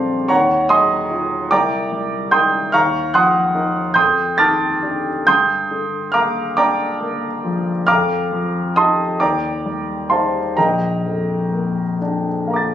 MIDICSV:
0, 0, Header, 1, 2, 480
1, 0, Start_track
1, 0, Tempo, 811908
1, 174, Time_signature, 6, 3, 24, 8
1, 2096, Tempo, 863309
1, 4496, Tempo, 881057
1, 5456, Tempo, 944882
1, 7041, End_track
2, 0, Start_track
2, 0, Title_t, "Grand piano"
2, 0, Program_c, 0, 0
2, 0, Control_c, 0, 64, 127
2, 0, Note_on_c, 0, 34, 45
2, 0, Note_on_c, 0, 41, 35
2, 0, Note_on_c, 0, 55, 32
2, 0, Note_on_c, 0, 60, 38
2, 0, Note_on_c, 0, 62, 37
2, 0, Note_on_c, 0, 72, 52
2, 0, Note_on_c, 0, 74, 64
2, 0, Note_on_c, 0, 77, 52
2, 0, Note_on_c, 0, 79, 61
2, 0, Note_on_c, 0, 81, 55
2, 0, Note_on_c, 0, 82, 56
2, 0, Note_on_c, 0, 84, 76
2, 0, Note_on_c, 0, 86, 77
2, 78, Note_off_c, 0, 60, 0
2, 150, Note_off_c, 0, 34, 0
2, 150, Note_off_c, 0, 77, 0
2, 151, Note_off_c, 0, 81, 0
2, 152, Note_off_c, 0, 72, 0
2, 168, Note_on_c, 0, 85, 71
2, 171, Note_off_c, 0, 82, 0
2, 171, Note_off_c, 0, 84, 0
2, 171, Note_on_c, 0, 82, 59
2, 173, Note_on_c, 0, 73, 54
2, 175, Note_on_c, 0, 39, 53
2, 177, Note_off_c, 0, 55, 0
2, 178, Note_on_c, 0, 78, 60
2, 185, Control_c, 0, 64, 0
2, 186, Note_off_c, 0, 79, 0
2, 187, Note_off_c, 0, 41, 0
2, 188, Note_off_c, 0, 62, 0
2, 189, Note_off_c, 0, 86, 0
2, 191, Note_off_c, 0, 74, 0
2, 281, Control_c, 0, 64, 127
2, 397, Note_off_c, 0, 82, 0
2, 398, Note_off_c, 0, 73, 0
2, 401, Note_off_c, 0, 78, 0
2, 409, Note_on_c, 0, 87, 86
2, 412, Note_on_c, 0, 54, 38
2, 413, Note_off_c, 0, 85, 0
2, 413, Note_on_c, 0, 75, 62
2, 414, Note_on_c, 0, 80, 67
2, 414, Note_on_c, 0, 84, 63
2, 655, Note_on_c, 0, 63, 38
2, 659, Note_on_c, 0, 65, 37
2, 796, Note_off_c, 0, 54, 0
2, 867, Note_off_c, 0, 75, 0
2, 868, Note_off_c, 0, 63, 0
2, 868, Note_off_c, 0, 80, 0
2, 868, Note_off_c, 0, 84, 0
2, 870, Note_off_c, 0, 65, 0
2, 871, Note_off_c, 0, 39, 0
2, 889, Note_off_c, 0, 87, 0
2, 891, Note_on_c, 0, 86, 83
2, 896, Note_on_c, 0, 36, 51
2, 897, Note_on_c, 0, 79, 54
2, 899, Note_on_c, 0, 74, 61
2, 899, Note_on_c, 0, 82, 62
2, 902, Control_c, 0, 64, 0
2, 988, Control_c, 0, 64, 127
2, 1135, Note_on_c, 0, 55, 35
2, 1350, Note_off_c, 0, 79, 0
2, 1351, Note_off_c, 0, 74, 0
2, 1352, Note_off_c, 0, 82, 0
2, 1368, Note_on_c, 0, 91, 72
2, 1371, Note_off_c, 0, 86, 0
2, 1371, Note_on_c, 0, 63, 30
2, 1371, Note_on_c, 0, 84, 61
2, 1374, Note_on_c, 0, 79, 58
2, 1374, Note_on_c, 0, 87, 56
2, 1376, Note_on_c, 0, 70, 36
2, 1519, Note_off_c, 0, 55, 0
2, 1589, Note_off_c, 0, 63, 0
2, 1592, Note_off_c, 0, 70, 0
2, 1594, Note_off_c, 0, 36, 0
2, 1596, Note_off_c, 0, 84, 0
2, 1598, Note_off_c, 0, 79, 0
2, 1598, Note_off_c, 0, 87, 0
2, 1610, Note_on_c, 0, 89, 78
2, 1611, Note_off_c, 0, 91, 0
2, 1616, Note_on_c, 0, 77, 70
2, 1617, Note_on_c, 0, 85, 68
2, 1620, Note_on_c, 0, 39, 47
2, 1620, Note_on_c, 0, 82, 71
2, 1622, Control_c, 0, 64, 0
2, 1731, Control_c, 0, 64, 127
2, 1839, Note_off_c, 0, 77, 0
2, 1839, Note_off_c, 0, 85, 0
2, 1841, Note_off_c, 0, 82, 0
2, 1853, Note_off_c, 0, 89, 0
2, 1856, Note_on_c, 0, 90, 76
2, 1861, Note_on_c, 0, 53, 37
2, 1862, Note_on_c, 0, 84, 64
2, 1863, Note_on_c, 0, 87, 65
2, 1865, Note_on_c, 0, 78, 67
2, 2096, Note_on_c, 0, 63, 40
2, 2100, Note_on_c, 0, 70, 42
2, 2238, Note_off_c, 0, 53, 0
2, 2308, Note_off_c, 0, 63, 0
2, 2310, Note_off_c, 0, 70, 0
2, 2311, Note_off_c, 0, 84, 0
2, 2311, Note_off_c, 0, 87, 0
2, 2312, Note_off_c, 0, 39, 0
2, 2312, Note_off_c, 0, 78, 0
2, 2315, Note_on_c, 0, 91, 73
2, 2323, Note_on_c, 0, 41, 49
2, 2323, Note_on_c, 0, 84, 56
2, 2324, Note_on_c, 0, 87, 65
2, 2326, Note_on_c, 0, 79, 62
2, 2331, Note_off_c, 0, 90, 0
2, 2339, Control_c, 0, 64, 0
2, 2432, Control_c, 0, 64, 127
2, 2551, Note_off_c, 0, 84, 0
2, 2551, Note_off_c, 0, 87, 0
2, 2552, Note_off_c, 0, 79, 0
2, 2559, Note_on_c, 0, 93, 83
2, 2563, Note_on_c, 0, 51, 38
2, 2564, Note_off_c, 0, 91, 0
2, 2564, Note_on_c, 0, 86, 62
2, 2564, Note_on_c, 0, 89, 61
2, 2566, Note_on_c, 0, 81, 55
2, 2807, Note_on_c, 0, 62, 31
2, 2812, Note_on_c, 0, 67, 33
2, 2956, Note_off_c, 0, 51, 0
2, 3031, Note_off_c, 0, 62, 0
2, 3031, Note_off_c, 0, 86, 0
2, 3031, Note_off_c, 0, 89, 0
2, 3032, Note_off_c, 0, 41, 0
2, 3032, Note_off_c, 0, 81, 0
2, 3034, Note_off_c, 0, 67, 0
2, 3051, Note_off_c, 0, 93, 0
2, 3053, Note_on_c, 0, 91, 90
2, 3057, Note_on_c, 0, 87, 66
2, 3060, Note_on_c, 0, 84, 70
2, 3061, Note_on_c, 0, 43, 52
2, 3062, Note_on_c, 0, 79, 58
2, 3068, Control_c, 0, 64, 0
2, 3165, Control_c, 0, 64, 127
2, 3300, Note_on_c, 0, 50, 41
2, 3515, Note_off_c, 0, 87, 0
2, 3516, Note_off_c, 0, 84, 0
2, 3518, Note_off_c, 0, 79, 0
2, 3526, Note_on_c, 0, 89, 80
2, 3533, Note_on_c, 0, 58, 41
2, 3535, Note_off_c, 0, 91, 0
2, 3537, Note_on_c, 0, 82, 59
2, 3538, Note_on_c, 0, 77, 57
2, 3538, Note_on_c, 0, 86, 63
2, 3681, Note_off_c, 0, 50, 0
2, 3759, Note_off_c, 0, 82, 0
2, 3760, Note_off_c, 0, 77, 0
2, 3760, Note_off_c, 0, 86, 0
2, 3770, Note_off_c, 0, 89, 0
2, 3777, Note_on_c, 0, 86, 74
2, 3781, Note_on_c, 0, 62, 36
2, 3781, Note_on_c, 0, 74, 56
2, 3782, Note_on_c, 0, 79, 55
2, 3782, Note_on_c, 0, 82, 63
2, 3917, Note_off_c, 0, 58, 0
2, 4019, Note_on_c, 0, 58, 38
2, 4159, Note_off_c, 0, 62, 0
2, 4263, Note_on_c, 0, 53, 33
2, 4399, Note_off_c, 0, 58, 0
2, 4474, Note_off_c, 0, 43, 0
2, 4475, Note_off_c, 0, 74, 0
2, 4475, Note_off_c, 0, 79, 0
2, 4476, Note_off_c, 0, 82, 0
2, 4495, Note_off_c, 0, 86, 0
2, 4498, Note_on_c, 0, 89, 78
2, 4500, Note_off_c, 0, 53, 0
2, 4503, Note_on_c, 0, 82, 56
2, 4504, Note_on_c, 0, 41, 50
2, 4505, Note_on_c, 0, 77, 56
2, 4505, Note_on_c, 0, 86, 63
2, 4506, Control_c, 0, 64, 0
2, 4605, Control_c, 0, 64, 127
2, 4747, Note_on_c, 0, 53, 37
2, 4956, Note_off_c, 0, 82, 0
2, 4957, Note_off_c, 0, 77, 0
2, 4957, Note_off_c, 0, 86, 0
2, 4976, Note_off_c, 0, 89, 0
2, 4986, Note_on_c, 0, 87, 75
2, 4990, Note_on_c, 0, 75, 51
2, 4992, Note_on_c, 0, 81, 48
2, 4992, Note_on_c, 0, 84, 55
2, 4993, Note_on_c, 0, 63, 32
2, 4993, Note_on_c, 0, 67, 37
2, 5122, Note_off_c, 0, 53, 0
2, 5195, Note_off_c, 0, 41, 0
2, 5199, Note_off_c, 0, 63, 0
2, 5200, Note_off_c, 0, 67, 0
2, 5204, Note_off_c, 0, 75, 0
2, 5205, Note_off_c, 0, 81, 0
2, 5205, Note_off_c, 0, 84, 0
2, 5218, Note_off_c, 0, 87, 0
2, 5221, Control_c, 0, 64, 0
2, 5225, Note_on_c, 0, 86, 64
2, 5227, Note_on_c, 0, 79, 47
2, 5229, Note_on_c, 0, 39, 39
2, 5230, Note_on_c, 0, 82, 50
2, 5231, Note_on_c, 0, 74, 47
2, 5311, Control_c, 0, 64, 127
2, 5472, Note_on_c, 0, 55, 30
2, 5677, Note_off_c, 0, 79, 0
2, 5679, Note_off_c, 0, 74, 0
2, 5679, Note_off_c, 0, 82, 0
2, 5696, Note_off_c, 0, 86, 0
2, 5696, Note_on_c, 0, 84, 49
2, 5700, Note_on_c, 0, 63, 25
2, 5701, Note_on_c, 0, 77, 39
2, 5701, Note_on_c, 0, 81, 41
2, 5702, Note_on_c, 0, 67, 24
2, 5703, Note_on_c, 0, 72, 38
2, 5843, Note_off_c, 0, 55, 0
2, 5917, Note_off_c, 0, 63, 0
2, 5918, Note_off_c, 0, 67, 0
2, 5920, Note_off_c, 0, 39, 0
2, 5921, Note_off_c, 0, 77, 0
2, 5921, Note_off_c, 0, 81, 0
2, 5922, Note_off_c, 0, 72, 0
2, 5935, Note_off_c, 0, 84, 0
2, 5935, Note_on_c, 0, 82, 59
2, 5940, Note_on_c, 0, 34, 35
2, 5942, Note_on_c, 0, 75, 43
2, 5943, Control_c, 0, 64, 0
2, 5943, Note_on_c, 0, 70, 45
2, 5943, Note_on_c, 0, 79, 46
2, 6034, Control_c, 0, 64, 127
2, 6180, Note_on_c, 0, 41, 27
2, 6421, Note_on_c, 0, 58, 31
2, 6568, Note_off_c, 0, 41, 0
2, 6646, Note_off_c, 0, 75, 0
2, 6646, Note_off_c, 0, 79, 0
2, 6647, Note_off_c, 0, 70, 0
2, 6663, Note_off_c, 0, 82, 0
2, 6672, Note_on_c, 0, 62, 31
2, 6803, Note_off_c, 0, 58, 0
2, 6904, Note_on_c, 0, 77, 23
2, 6907, Note_on_c, 0, 58, 29
2, 6919, Note_on_c, 0, 82, 23
2, 6935, Note_on_c, 0, 86, 23
2, 6949, Note_on_c, 0, 93, 23
2, 7041, Note_off_c, 0, 34, 0
2, 7041, Note_off_c, 0, 58, 0
2, 7041, Note_off_c, 0, 62, 0
2, 7041, Note_off_c, 0, 77, 0
2, 7041, Note_off_c, 0, 82, 0
2, 7041, Note_off_c, 0, 86, 0
2, 7041, Note_off_c, 0, 93, 0
2, 7041, End_track
0, 0, End_of_file